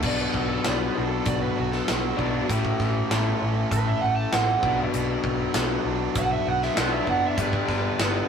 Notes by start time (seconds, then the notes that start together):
0.01 B1 B2 F#3 B3 D4, kick, crash
0.07 D5
0.21 B4
0.34 B1 F#3 F#4, kick
0.49 A4
0.65 B1 B3 D5, snare, closed hi-hat
0.80 B4
0.95 B1 D4 F#4
1.09 A4
1.26 B1 F#4 D5, kick, closed hi-hat
1.43 B4
1.57 B1 B3 F#4
1.72 A4, snare
1.88 B1 F#3 F#4, snare, closed hi-hat
2.17 B1 B2 F#3 B3 D4, kick
2.48 A1 A2 E3 A3 C#4 E4, kick, closed hi-hat
2.65 kick
2.80 A1 E3, kick, snare
3.11 A1 A3, snare, closed hi-hat
3.42 A1 C#4
3.71 A1 A4 B4, kick, closed hi-hat
3.87 E5
4.01 A1 A3 F#5
4.16 A5
4.32 A1 E3 F#5, snare, closed hi-hat
4.62 B1 B2 F#3 B3 D4, kick
4.94 B1 B2, closed hi-hat
5.24 B1 F#3, kick
5.54 B1 B3, snare, closed hi-hat
5.85 B1 D4
6.15 B1 F#4 F#5, kick, closed hi-hat
6.32 E5
6.46 B1 B3 F#5
6.62 E5, snare
6.75 B1 B2 F#3 B3 D4 F#5, snare, closed hi-hat
6.79 F#3
6.93 E5
7.07 F#1 D4 F#5, kick
7.26 E5
7.37 G1 G2 D3 G3 B3 D4, kick, closed hi-hat
7.41 B4
7.53 kick
7.68 G1 D3, kick, snare
8.00 G1 B3, snare, closed hi-hat